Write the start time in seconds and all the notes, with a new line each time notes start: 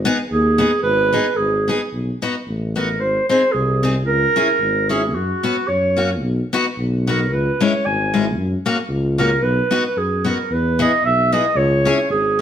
Already playing: G#1
0.05 B3 D#4 G#4
0.30 D#2 G#4
0.58 B3 D#4 G#4
0.82 G#1 B4
1.13 B3 D#4 G#4
1.37 G#1 G#4
1.68 B3 D#4 G#4
1.92 B1
2.22 B3 D#4 F#4
2.47 A1
2.75 B3 D#4 F#4 A#4
3.00 G#1 C5
3.29 C4 D#4 G#4 C5
3.52 C2 G#4
3.83 C4 D#4 G#4
4.07 C#2 A#4
4.36 C#4 E4 G#4
4.60 G#1
4.89 C#4 E4 G#4
5.08 G#4
5.14 F#2 F#4
5.43 B3 C#4 F#4
5.68 F#2 C#5
5.97 A#3 C#4 F#4
6.22 B1
6.53 B3 D#4 F#4
6.78 B1
7.07 B3 D#4 F#4 A#4
7.31 C#2 B4
7.61 G#3 C#4 E4 C#5
7.86 G#1 G#5
8.14 G#3 C#4 E4
8.37 F#2
8.66 A#3 C#4 F#4
8.89 C#2
9.18 A#3 C#4 F#4 A#4
9.42 B1 B4
9.71 B3 D#4 F#4
9.85 B4
9.97 F#2 G#4
10.25 B3 D#4 F#4
10.29 A#4
10.50 E2 B4
10.79 B3 E4 G#4 D#5
11.04 B1 E5
11.32 B3 E4 G#4 D#5
11.55 C#2 C#5
11.85 C#4 E4 G#4
12.09 G#1 G#4